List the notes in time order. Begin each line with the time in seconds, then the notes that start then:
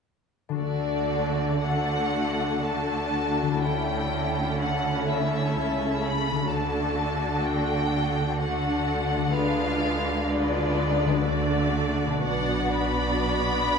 0.49 D3 D4 F#4
0.54 A4
0.59 D2 D3 A3 D4 F#4 A4 D5
1.64 A3 D4 F#4 A4 F#5
2.62 A3 D4 F#4 A4 A5
3.42 D3
3.47 C#4
3.51 E4
3.56 A4
3.61 D2 D3 A3 C#4 E4 A4 G5
4.62 F#5
5.11 E5
5.55 C#2 C#3
6.03 B5
6.31 D3
6.36 D4
6.40 F#4
6.44 A4
6.49 D2 D3 A3 D4 F#4 A4 A5
7.46 G5
8.40 A3 D4 F#4 A4 F#5
9.17 D3
9.21 D4
9.26 G#4
9.31 F4 B4 F5
9.35 D2 D3 G#3 D4
10.28 G#3 D4 F4 B4 D5
11.05 D3 D4
11.14 F#4
11.18 A4
11.23 D2 D3 A3 D4 F#4 D5
12.06 B2
12.10 D4
12.15 F#4
12.19 B4
12.25 B1 B2 B3 D4 F#4 D5 F#5
12.79 B5